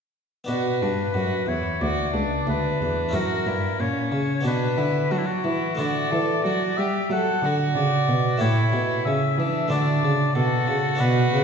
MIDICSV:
0, 0, Header, 1, 5, 480
1, 0, Start_track
1, 0, Key_signature, 2, "minor"
1, 0, Tempo, 665188
1, 344, Time_signature, 4, 2, 24, 8
1, 4180, Tempo, 652884
1, 8331, End_track
2, 0, Start_track
2, 0, Title_t, "Oboe"
2, 0, Program_c, 0, 68
2, 346, Note_on_c, 0, 71, 68
2, 1070, Note_on_c, 0, 73, 74
2, 1080, Note_off_c, 0, 71, 0
2, 1309, Note_on_c, 0, 74, 77
2, 1320, Note_off_c, 0, 73, 0
2, 1790, Note_off_c, 0, 74, 0
2, 1797, Note_on_c, 0, 71, 65
2, 2260, Note_off_c, 0, 71, 0
2, 2269, Note_on_c, 0, 70, 77
2, 2746, Note_on_c, 0, 73, 81
2, 2757, Note_off_c, 0, 70, 0
2, 3217, Note_off_c, 0, 73, 0
2, 3227, Note_on_c, 0, 71, 77
2, 3694, Note_on_c, 0, 66, 69
2, 3705, Note_off_c, 0, 71, 0
2, 3741, Note_on_c, 0, 64, 56
2, 3752, Note_off_c, 0, 66, 0
2, 3799, Note_on_c, 0, 66, 74
2, 3809, Note_off_c, 0, 64, 0
2, 4173, Note_off_c, 0, 66, 0
2, 4177, Note_on_c, 0, 74, 84
2, 4902, Note_on_c, 0, 76, 78
2, 4913, Note_off_c, 0, 74, 0
2, 5144, Note_off_c, 0, 76, 0
2, 5156, Note_on_c, 0, 78, 88
2, 5456, Note_off_c, 0, 78, 0
2, 5617, Note_on_c, 0, 74, 85
2, 6101, Note_on_c, 0, 73, 84
2, 6112, Note_off_c, 0, 74, 0
2, 6572, Note_off_c, 0, 73, 0
2, 6576, Note_on_c, 0, 76, 90
2, 7050, Note_off_c, 0, 76, 0
2, 7056, Note_on_c, 0, 74, 91
2, 7525, Note_off_c, 0, 74, 0
2, 7535, Note_on_c, 0, 69, 86
2, 8012, Note_on_c, 0, 71, 83
2, 8023, Note_off_c, 0, 69, 0
2, 8331, Note_off_c, 0, 71, 0
2, 8331, End_track
3, 0, Start_track
3, 0, Title_t, "Violin"
3, 0, Program_c, 1, 40
3, 352, Note_on_c, 1, 66, 57
3, 595, Note_on_c, 1, 62, 50
3, 606, Note_off_c, 1, 66, 0
3, 824, Note_off_c, 1, 62, 0
3, 828, Note_on_c, 1, 66, 52
3, 1060, Note_off_c, 1, 66, 0
3, 1072, Note_on_c, 1, 64, 52
3, 1303, Note_off_c, 1, 64, 0
3, 1313, Note_on_c, 1, 66, 62
3, 1545, Note_off_c, 1, 66, 0
3, 1554, Note_on_c, 1, 62, 56
3, 2265, Note_on_c, 1, 66, 59
3, 2275, Note_off_c, 1, 62, 0
3, 2503, Note_on_c, 1, 64, 52
3, 2514, Note_off_c, 1, 66, 0
3, 2742, Note_on_c, 1, 61, 55
3, 2753, Note_off_c, 1, 64, 0
3, 3206, Note_off_c, 1, 61, 0
3, 3211, Note_on_c, 1, 62, 59
3, 3445, Note_on_c, 1, 64, 55
3, 3456, Note_off_c, 1, 62, 0
3, 3693, Note_on_c, 1, 62, 54
3, 3703, Note_off_c, 1, 64, 0
3, 3928, Note_off_c, 1, 62, 0
3, 3933, Note_on_c, 1, 64, 60
3, 4173, Note_off_c, 1, 64, 0
3, 4178, Note_on_c, 1, 66, 60
3, 4417, Note_on_c, 1, 69, 65
3, 4428, Note_off_c, 1, 66, 0
3, 4658, Note_off_c, 1, 69, 0
3, 4663, Note_on_c, 1, 66, 59
3, 4922, Note_on_c, 1, 67, 62
3, 4933, Note_off_c, 1, 66, 0
3, 5154, Note_off_c, 1, 67, 0
3, 5164, Note_on_c, 1, 69, 72
3, 5398, Note_on_c, 1, 66, 70
3, 5409, Note_off_c, 1, 69, 0
3, 6108, Note_off_c, 1, 66, 0
3, 6112, Note_on_c, 1, 64, 69
3, 6584, Note_on_c, 1, 61, 57
3, 6595, Note_off_c, 1, 64, 0
3, 6818, Note_on_c, 1, 62, 65
3, 6829, Note_off_c, 1, 61, 0
3, 7533, Note_off_c, 1, 62, 0
3, 7537, Note_on_c, 1, 66, 79
3, 8331, Note_off_c, 1, 66, 0
3, 8331, End_track
4, 0, Start_track
4, 0, Title_t, "Harpsichord"
4, 0, Program_c, 2, 6
4, 320, Note_on_c, 2, 59, 37
4, 331, Note_on_c, 2, 62, 37
4, 345, Note_on_c, 2, 66, 36
4, 353, Note_on_c, 2, 47, 42
4, 567, Note_off_c, 2, 47, 0
4, 597, Note_on_c, 2, 43, 42
4, 808, Note_off_c, 2, 43, 0
4, 824, Note_on_c, 2, 42, 48
4, 1039, Note_off_c, 2, 42, 0
4, 1056, Note_on_c, 2, 40, 40
4, 1275, Note_off_c, 2, 40, 0
4, 1309, Note_on_c, 2, 38, 41
4, 1524, Note_off_c, 2, 38, 0
4, 1543, Note_on_c, 2, 37, 43
4, 1762, Note_off_c, 2, 37, 0
4, 1783, Note_on_c, 2, 38, 43
4, 2001, Note_off_c, 2, 38, 0
4, 2037, Note_on_c, 2, 40, 44
4, 2224, Note_off_c, 2, 59, 0
4, 2229, Note_on_c, 2, 61, 40
4, 2230, Note_off_c, 2, 62, 0
4, 2236, Note_off_c, 2, 66, 0
4, 2241, Note_on_c, 2, 64, 40
4, 2246, Note_off_c, 2, 40, 0
4, 2255, Note_on_c, 2, 66, 39
4, 2268, Note_on_c, 2, 42, 42
4, 2476, Note_off_c, 2, 61, 0
4, 2480, Note_off_c, 2, 42, 0
4, 2502, Note_on_c, 2, 43, 44
4, 2715, Note_off_c, 2, 43, 0
4, 2742, Note_on_c, 2, 46, 52
4, 2954, Note_off_c, 2, 46, 0
4, 2973, Note_on_c, 2, 49, 42
4, 3173, Note_off_c, 2, 64, 0
4, 3180, Note_off_c, 2, 66, 0
4, 3180, Note_on_c, 2, 59, 40
4, 3188, Note_off_c, 2, 49, 0
4, 3195, Note_on_c, 2, 62, 39
4, 3206, Note_on_c, 2, 66, 38
4, 3217, Note_on_c, 2, 47, 42
4, 3429, Note_off_c, 2, 47, 0
4, 3448, Note_on_c, 2, 50, 48
4, 3664, Note_off_c, 2, 50, 0
4, 3689, Note_on_c, 2, 54, 46
4, 3910, Note_off_c, 2, 54, 0
4, 3927, Note_on_c, 2, 52, 50
4, 4134, Note_off_c, 2, 59, 0
4, 4141, Note_off_c, 2, 62, 0
4, 4146, Note_off_c, 2, 66, 0
4, 4149, Note_on_c, 2, 57, 39
4, 4151, Note_off_c, 2, 52, 0
4, 4163, Note_on_c, 2, 62, 43
4, 4174, Note_on_c, 2, 66, 43
4, 4187, Note_on_c, 2, 50, 45
4, 4399, Note_off_c, 2, 57, 0
4, 4402, Note_off_c, 2, 50, 0
4, 4424, Note_on_c, 2, 52, 49
4, 4640, Note_off_c, 2, 52, 0
4, 4671, Note_on_c, 2, 54, 50
4, 4885, Note_off_c, 2, 54, 0
4, 4914, Note_on_c, 2, 55, 47
4, 5126, Note_off_c, 2, 55, 0
4, 5150, Note_on_c, 2, 54, 46
4, 5364, Note_off_c, 2, 54, 0
4, 5394, Note_on_c, 2, 50, 51
4, 5606, Note_off_c, 2, 50, 0
4, 5632, Note_on_c, 2, 49, 49
4, 5843, Note_off_c, 2, 49, 0
4, 5867, Note_on_c, 2, 47, 54
4, 6064, Note_off_c, 2, 62, 0
4, 6070, Note_off_c, 2, 66, 0
4, 6080, Note_off_c, 2, 47, 0
4, 6080, Note_on_c, 2, 57, 44
4, 6088, Note_on_c, 2, 64, 41
4, 6097, Note_on_c, 2, 67, 44
4, 6113, Note_on_c, 2, 45, 46
4, 6325, Note_off_c, 2, 45, 0
4, 6340, Note_on_c, 2, 47, 54
4, 6559, Note_off_c, 2, 47, 0
4, 6591, Note_on_c, 2, 49, 57
4, 6805, Note_off_c, 2, 49, 0
4, 6831, Note_on_c, 2, 52, 47
4, 7023, Note_off_c, 2, 57, 0
4, 7028, Note_off_c, 2, 64, 0
4, 7032, Note_off_c, 2, 67, 0
4, 7038, Note_on_c, 2, 57, 44
4, 7043, Note_off_c, 2, 52, 0
4, 7048, Note_on_c, 2, 62, 44
4, 7064, Note_on_c, 2, 66, 42
4, 7069, Note_on_c, 2, 50, 47
4, 7280, Note_off_c, 2, 50, 0
4, 7281, Note_off_c, 2, 57, 0
4, 7308, Note_on_c, 2, 49, 51
4, 7519, Note_off_c, 2, 49, 0
4, 7533, Note_on_c, 2, 47, 50
4, 7751, Note_off_c, 2, 47, 0
4, 7768, Note_on_c, 2, 49, 56
4, 7973, Note_on_c, 2, 59, 43
4, 7975, Note_off_c, 2, 62, 0
4, 7984, Note_on_c, 2, 62, 47
4, 7987, Note_off_c, 2, 66, 0
4, 7990, Note_off_c, 2, 49, 0
4, 7996, Note_on_c, 2, 66, 45
4, 8006, Note_on_c, 2, 47, 47
4, 8229, Note_off_c, 2, 47, 0
4, 8260, Note_on_c, 2, 49, 51
4, 8331, Note_off_c, 2, 49, 0
4, 8331, Note_off_c, 2, 59, 0
4, 8331, Note_off_c, 2, 62, 0
4, 8331, Note_off_c, 2, 66, 0
4, 8331, End_track
5, 0, Start_track
5, 0, Title_t, "Cello"
5, 0, Program_c, 3, 42
5, 346, Note_on_c, 3, 47, 59
5, 571, Note_off_c, 3, 47, 0
5, 591, Note_on_c, 3, 43, 57
5, 812, Note_off_c, 3, 43, 0
5, 830, Note_on_c, 3, 42, 52
5, 1049, Note_off_c, 3, 42, 0
5, 1066, Note_on_c, 3, 40, 55
5, 1288, Note_off_c, 3, 40, 0
5, 1312, Note_on_c, 3, 38, 60
5, 1533, Note_off_c, 3, 38, 0
5, 1545, Note_on_c, 3, 37, 57
5, 1770, Note_off_c, 3, 37, 0
5, 1788, Note_on_c, 3, 38, 56
5, 2011, Note_off_c, 3, 38, 0
5, 2029, Note_on_c, 3, 40, 53
5, 2249, Note_off_c, 3, 40, 0
5, 2259, Note_on_c, 3, 42, 62
5, 2482, Note_off_c, 3, 42, 0
5, 2497, Note_on_c, 3, 43, 57
5, 2719, Note_off_c, 3, 43, 0
5, 2738, Note_on_c, 3, 46, 55
5, 2959, Note_off_c, 3, 46, 0
5, 2970, Note_on_c, 3, 49, 55
5, 3194, Note_off_c, 3, 49, 0
5, 3208, Note_on_c, 3, 47, 62
5, 3431, Note_off_c, 3, 47, 0
5, 3448, Note_on_c, 3, 50, 57
5, 3671, Note_off_c, 3, 50, 0
5, 3689, Note_on_c, 3, 54, 56
5, 3917, Note_off_c, 3, 54, 0
5, 3933, Note_on_c, 3, 52, 60
5, 4161, Note_off_c, 3, 52, 0
5, 4175, Note_on_c, 3, 50, 66
5, 4403, Note_off_c, 3, 50, 0
5, 4425, Note_on_c, 3, 52, 58
5, 4648, Note_off_c, 3, 52, 0
5, 4660, Note_on_c, 3, 54, 58
5, 4887, Note_off_c, 3, 54, 0
5, 4903, Note_on_c, 3, 55, 66
5, 5128, Note_off_c, 3, 55, 0
5, 5139, Note_on_c, 3, 54, 69
5, 5365, Note_off_c, 3, 54, 0
5, 5375, Note_on_c, 3, 50, 61
5, 5603, Note_off_c, 3, 50, 0
5, 5618, Note_on_c, 3, 49, 66
5, 5843, Note_off_c, 3, 49, 0
5, 5862, Note_on_c, 3, 47, 62
5, 6085, Note_off_c, 3, 47, 0
5, 6103, Note_on_c, 3, 45, 68
5, 6327, Note_off_c, 3, 45, 0
5, 6341, Note_on_c, 3, 47, 61
5, 6566, Note_off_c, 3, 47, 0
5, 6580, Note_on_c, 3, 49, 64
5, 6806, Note_off_c, 3, 49, 0
5, 6818, Note_on_c, 3, 52, 63
5, 7043, Note_off_c, 3, 52, 0
5, 7053, Note_on_c, 3, 50, 76
5, 7278, Note_off_c, 3, 50, 0
5, 7296, Note_on_c, 3, 49, 64
5, 7519, Note_off_c, 3, 49, 0
5, 7534, Note_on_c, 3, 47, 63
5, 7759, Note_off_c, 3, 47, 0
5, 7772, Note_on_c, 3, 49, 61
5, 7999, Note_off_c, 3, 49, 0
5, 8007, Note_on_c, 3, 47, 67
5, 8237, Note_off_c, 3, 47, 0
5, 8248, Note_on_c, 3, 49, 58
5, 8331, Note_off_c, 3, 49, 0
5, 8331, End_track
0, 0, End_of_file